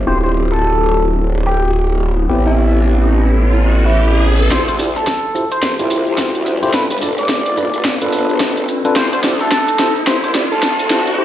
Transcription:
0.07 2.27 D1 medium
0.07 2.27 C4 medium
0.07 2.27 E4 medium
0.07 2.27 F4 medium
0.07 2.27 G4 medium
0.07 0.18 C5 medium
0.07 riser medium
0.24 0.31 C5 medium
0.51 1.04 A4 medium
1.46 1.71 G4 loud
2.29 4.49 A1 medium
2.29 4.49 B3 medium
2.29 4.49 C4 medium
2.29 4.49 E4 medium
2.29 4.49 G4 medium
2.46 2.55 E4 medium
2.57 2.82 E4 medium
3.85 4.24 E4 medium
4.51 5.05 D2 loud
4.51 4.65 E4 medium
4.51 4.65 F4 medium
4.51 4.65 G4 medium
4.51 4.62 C5 medium
4.51 4.65 C5 loud
4.51 kick medium
4.51 snare soft
4.51 closed hi-hat medium
4.51 riser medium
4.51 maracas soft
4.68 4.75 C5 medium
4.68 closed hi-hat medium
4.68 maracas soft
4.79 4.88 E4 medium
4.79 4.88 F4 medium
4.79 4.88 G4 medium
4.79 4.88 D5 medium
4.79 open hi-hat medium
4.79 maracas medium
4.96 5.48 A4 medium
4.96 maracas soft
5.07 kick loud
5.07 snare soft
5.07 closed hi-hat medium
5.07 maracas soft
5.35 5.43 E4 medium
5.35 5.43 F4 medium
5.35 5.43 G4 medium
5.35 5.43 C5 medium
5.35 maracas medium
5.51 5.74 C5 medium
5.51 closed hi-hat soft
5.51 maracas soft
5.63 5.77 F1 medium
5.63 kick medium
5.63 snare medium
5.63 closed hi-hat medium
5.63 maracas soft
5.79 6.04 C2 medium
5.79 6.59 E4 medium
5.79 6.59 F4 medium
5.79 6.59 G4 medium
5.79 6.59 C5 loud
5.79 closed hi-hat medium
5.79 maracas soft
5.90 open hi-hat medium
5.90 maracas medium
6.06 6.72 D2 loud
6.06 maracas soft
6.18 kick loud
6.18 snare medium
6.18 closed hi-hat medium
6.18 maracas soft
6.34 closed hi-hat soft
6.34 maracas soft
6.46 maracas loud
6.62 6.71 E4 medium
6.62 6.71 F4 medium
6.62 6.71 G4 medium
6.62 6.71 C5 loud
6.62 closed hi-hat soft
6.62 maracas soft
6.74 6.87 D4 medium
6.74 6.87 F4 medium
6.74 6.87 A4 medium
6.74 6.84 B4 medium
6.74 6.87 B4 loud
6.74 kick medium
6.74 snare medium
6.74 closed hi-hat medium
6.74 maracas medium
6.90 7.47 G1 loud
6.90 6.98 B4 medium
6.90 closed hi-hat medium
6.90 maracas soft
6.92 closed hi-hat soft
6.98 7.10 D4 medium
6.98 7.10 F4 medium
6.98 7.10 A4 medium
6.98 7.10 D5 medium
6.98 closed hi-hat soft
6.98 open hi-hat medium
7.02 maracas loud
7.18 7.95 D5 loud
7.18 closed hi-hat soft
7.18 maracas soft
7.29 kick medium
7.29 snare medium
7.29 closed hi-hat medium
7.29 maracas medium
7.46 7.71 F#1 loud
7.46 closed hi-hat medium
7.57 7.65 D4 medium
7.57 7.65 F4 medium
7.57 7.65 A4 medium
7.57 7.65 B4 medium
7.57 maracas medium
7.73 8.27 G1 loud
7.73 closed hi-hat soft
7.73 maracas soft
7.85 kick medium
7.85 snare medium
7.85 maracas medium
8.01 8.81 D4 medium
8.01 8.81 F4 medium
8.01 8.81 A4 medium
8.01 8.81 B4 loud
8.01 closed hi-hat medium
8.01 maracas soft
8.12 open hi-hat medium
8.12 maracas loud
8.29 8.66 G1 loud
8.29 maracas soft
8.40 kick loud
8.40 snare medium
8.40 closed hi-hat medium
8.40 maracas soft
8.57 closed hi-hat medium
8.57 maracas soft
8.68 maracas medium
8.85 8.93 D4 loud
8.85 8.93 F4 medium
8.85 8.93 A4 medium
8.85 8.93 B4 loud
8.85 closed hi-hat soft
8.85 maracas soft
8.96 9.50 D2 loud
8.96 9.09 G4 medium
8.96 9.07 C5 medium
8.96 kick loud
8.96 snare medium
8.96 closed hi-hat medium
8.96 maracas medium
9.12 9.20 C5 medium
9.12 closed hi-hat medium
9.12 maracas soft
9.23 9.32 E4 medium
9.23 9.32 F4 medium
9.23 9.32 G4 medium
9.23 9.32 D5 medium
9.23 snare medium
9.23 open hi-hat medium
9.23 maracas medium
9.40 9.93 A4 medium
9.40 maracas soft
9.51 kick loud
9.51 snare medium
9.51 closed hi-hat medium
9.51 maracas medium
9.68 closed hi-hat medium
9.79 9.87 E4 medium
9.79 9.87 F4 medium
9.79 9.87 G4 medium
9.79 9.87 C5 medium
9.79 snare medium
9.79 maracas medium
9.96 maracas soft
10.07 10.21 F1 loud
10.07 10.20 E4 medium
10.07 10.20 F4 medium
10.07 10.20 G4 medium
10.07 10.18 C5 medium
10.07 10.20 C5 medium
10.07 kick loud
10.07 snare medium
10.07 closed hi-hat medium
10.07 maracas medium
10.23 10.49 C2 loud
10.23 10.31 C5 medium
10.23 closed hi-hat medium
10.23 maracas soft
10.34 10.43 E4 medium
10.34 10.43 F4 medium
10.34 10.43 G4 medium
10.34 10.43 D5 medium
10.34 snare medium
10.34 open hi-hat medium
10.34 maracas medium
10.51 11.16 D2 loud
10.51 11.04 A4 medium
10.51 maracas soft
10.62 kick loud
10.62 snare medium
10.62 closed hi-hat medium
10.62 maracas medium
10.79 closed hi-hat medium
10.79 maracas soft
10.90 10.99 E4 medium
10.90 10.99 F4 medium
10.90 10.99 G4 medium
10.90 10.99 C5 medium
10.90 snare medium
10.90 maracas loud
11.07 closed hi-hat soft
11.07 maracas soft
11.18 11.25 E4 medium
11.18 11.25 G4 medium
11.18 11.25 C5 medium

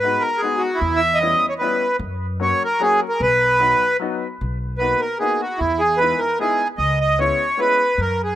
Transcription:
0.00 0.15 G#2 medium
0.00 0.24 G#3 soft
0.00 0.25 B3 soft
0.00 0.23 B4 medium
0.04 0.25 D#4 soft
0.04 0.25 F#4 medium
0.20 0.41 A#4 medium
0.38 0.62 G#4 medium
0.42 0.64 G#3 medium
0.42 0.64 B3 soft
0.42 0.64 D#4 soft
0.42 0.65 F#4 medium
0.57 0.80 F#4 medium
0.75 1.00 E4 medium
0.81 1.33 E2 medium
0.96 1.19 E5 medium
1.15 1.46 D#5 medium
1.21 1.42 G3 medium
1.21 1.43 B3 soft
1.21 1.43 C#4 soft
1.21 1.43 E4 medium
1.49 1.54 C#5 medium
1.58 1.82 G3 medium
1.58 1.82 B3 soft
1.58 1.83 C#4 soft
1.58 1.97 B4 medium
1.63 1.83 E4 medium
1.99 2.51 F#2 medium
2.40 2.61 F#3 soft
2.40 2.61 A#3 soft
2.40 2.62 C#4 soft
2.40 2.62 F#4 medium
2.40 2.63 C#5 medium
2.65 2.82 A#4 medium
2.80 3.01 F#3 medium
2.80 3.01 A#3 soft
2.80 3.02 C#4 soft
2.80 3.02 F#4 medium
2.80 3.00 G#4 medium
3.09 3.21 A#4 medium
3.20 3.72 B1 medium
3.20 3.97 B4 medium
3.59 3.81 F#3 soft
3.59 3.81 B3 soft
3.59 3.81 D#4 soft
3.59 3.82 F#4 medium
4.00 4.21 F#3 medium
4.00 4.22 B3 medium
4.00 4.22 D#4 medium
4.00 4.22 F#4 medium
4.41 4.92 B1 medium
4.78 5.01 A#3 soft
4.78 5.01 B3 soft
4.78 5.02 D#4 soft
4.78 5.02 F#4 soft
4.78 5.01 B4 medium
5.01 5.18 A#4 medium
5.19 5.41 A#3 soft
5.19 5.41 B3 soft
5.19 5.41 D#4 soft
5.19 5.42 F#4 medium
5.19 5.41 G#4 medium
5.41 5.60 F#4 medium
5.58 6.12 E2 medium
5.58 5.81 E4 medium
5.79 5.99 G#4 medium
5.97 6.21 G#3 soft
5.97 6.21 B3 soft
5.97 6.21 D#4 soft
5.97 6.21 E4 medium
5.97 6.20 B4 medium
6.19 6.39 A#4 medium
6.39 6.60 G#3 medium
6.39 6.61 B3 soft
6.39 6.61 D#4 medium
6.39 6.61 E4 medium
6.39 6.68 G#4 medium
6.78 7.30 C#2 medium
6.78 6.99 D#5 medium
7.01 7.19 D#5 medium
7.19 7.40 G#3 medium
7.19 7.40 B3 soft
7.19 7.40 C#4 soft
7.19 7.41 E4 medium
7.19 7.60 C#5 medium
7.57 7.79 G#3 medium
7.57 7.80 B3 soft
7.57 7.80 C#4 soft
7.57 7.80 E4 medium
7.57 8.00 B4 medium
7.98 8.35 F#2 medium
7.98 8.22 A#4 medium
8.24 8.35 G#4 medium

